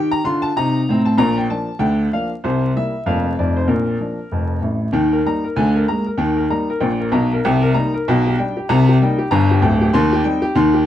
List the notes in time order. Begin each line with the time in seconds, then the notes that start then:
Already playing: D#3 G4
0.11 A#5
0.24 D3 F4 C6
0.42 A5
0.56 C3 D#4 A#5
0.89 A2 C4
1.05 A5
1.18 A#1 A#2 A#5
1.38 G5
1.50 F3 A#3 D4 A5
1.79 D2 D3 G5
2.13 F3 A#3 D4 F5
2.44 C2 C3 C5
2.76 G3 A#3 E4 E5
3.06 F1 F2 F3 A#3 D4 F5
3.39 F1 F2 F3 A3 D#4 D5
3.57 C5
3.68 A#1 A#2 A#4
4.00 F3 A#3 D4
4.32 F1 F2
4.62 A1 A2
4.92 D#2 D#3 G5
5.13 A#4
5.26 G3 A#3 D#4 A#5
5.44 A#4
5.56 D2 D3 G#5
5.75 A#4
5.88 G#3 A#3 A#5
6.06 A#4
6.17 D#2 D#3 G5
6.37 A#4
6.50 G3 A#3 D#4 A#5
6.70 A#4
6.80 A#1 A#2 G5
7.00 A#4
7.12 B1 B2 A#5
7.33 A#4
7.45 C2 C3 G5
7.62 A#4
7.74 G3 A#3 D#4 A#5
7.94 A#4
8.08 B1 B2 G5
8.27 G4
8.39 G3 D4 G5
8.57 G4
8.69 C2 C3 A#5
8.89 G4
9.02 G3 A#3 D#4 G5
9.18 G4
9.31 G1 G2 A#5
9.51 G4
9.62 D1 D2 G5
9.81 G4
9.93 D#2 D#3 C6
10.13 G4
10.24 G3 C4 D#4 G5
10.42 G4
10.55 D#2 D#3 C6
10.74 G4